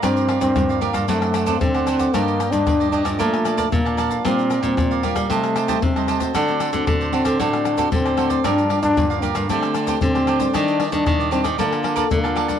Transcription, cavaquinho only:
X:1
M:4/4
L:1/16
Q:1/4=114
K:Gm
V:1 name="Cavaquinho"
[GBdf]2 [GBdf]3 [Bdf] [GBdf] [Bdf] [Dcd^f]2 [Dcdf] [Dcdf] z [cdf] [Dcdf] [cdf] | [DGde]2 [Gde]3 [Gde] [DGde] [Gde] [Bdfa]2 [Bdfa] [Bdfa] z [dfa] [Bdfa] [dfa] | [GBdf]2 [GBdf]3 [Bdf] [GBdf] [Bdf] [Gcea]2 [Gcea] [Gcea] z [cea] [Gcea] [cea] | [^FAcd]2 [FAcd]3 [Acd] [FAcd] [Acd] [FAcd]2 [FAcd] [FAcd] z [Acd] [FAcd] [Acd] |
[GBdf]2 [GBdf]3 [Bdf] [GBdf] [Bdf] [DGcd]2 [DGcd] [DGcd] z [Gcd] [DGcd] [Gcd] | [DGde]2 [Gde]3 [Gde] [DGde] [Gde] [Bdfa]2 [Bdfa] [Bdfa] z [dfa] [Bdfa] [dfa] |]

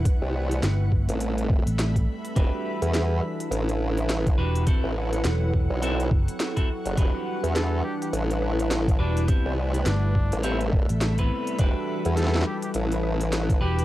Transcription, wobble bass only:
X:1
M:4/4
L:1/16
Q:"Swing 16ths" 1/4=104
K:Em
V:1 name="Wobble bass" clef=bass
z C,,3 z3 A,,,4 z4 z | E,,, z2 E,,3 z2 A,,,6 z2 | z A,,,3 z3 B,,,3 z4 z F,,, | E,,, z2 E,,3 z2 A,,,6 z2 |
z C,,3 z3 A,,,4 z4 z | E,,, z2 E,,3 z2 A,,,6 z2 |]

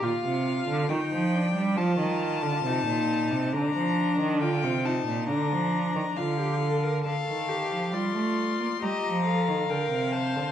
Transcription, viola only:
X:1
M:4/4
L:1/16
Q:1/4=68
K:Bbmix
V:1 name="Viola"
F4 E2 D2 F4 E4 | D4 F2 E2 D4 F G =A B | =A2 G2 F4 G2 A2 B2 c2 |]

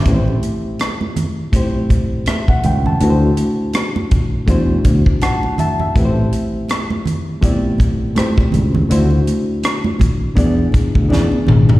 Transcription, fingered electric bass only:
X:1
M:4/4
L:1/16
Q:"Swing 16ths" 1/4=81
K:Ador
V:1 name="Fingered electric bass" clef=bass
A,,,2 z12 ^C,,2 | D,,2 z6 E,,2 D,, z4 z | A,,,2 z12 ^C,,2 | D,,2 z6 E,,2 z D,, E,, z ^G,,,2 |]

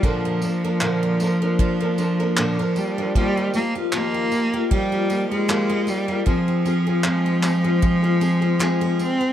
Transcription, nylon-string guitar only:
X:1
M:4/4
L:1/16
Q:"Swing 16ths" 1/4=77
K:Eb
V:1 name="Nylon-string guitar"
[B,,D,F,B,DB]2 [F,B,DB] [F,B,DB] [B,,D,F,B,DB]2 [F,B,DB] [F,B,DB]2 [F,B,DB] [F,B,DB] [F,B,DB] [B,,D,F,B,DB] [F,B,DB]2 [F,B,DB] | [E,F,B,FG]2 [F,B,FG] [B,FG] [E,F,B,FG]2 [F,B,FG] [B,FG]2 [B,FG] [F,B,FG] [B,FG] [E,F,B,FG] [B,FG]2 [B,FG] | [F,CFA]2 [F,CFA] [CFA] [F,CFA]2 [F,CFA] [CFA]2 [CFA] [F,CFA] [CFA] [F,CFA] [CFA]3 |]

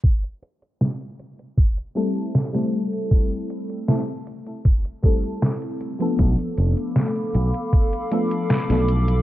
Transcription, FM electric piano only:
X:1
M:4/4
L:1/16
Q:1/4=78
K:Am
V:1 name="FM electric piano"
z8 z2 [G,A,CEA]3 [G,A,CEA]3- | [G,A,CEA]4 [G,A,CEA] z4 z [G,A,CEA]4- [G,A,CEA] [F,A,B,DA]- | [F,A,B,DA]8- [F,A,B,DA]2 [F,A,B,DA]3 [F,A,B,DA]3 |]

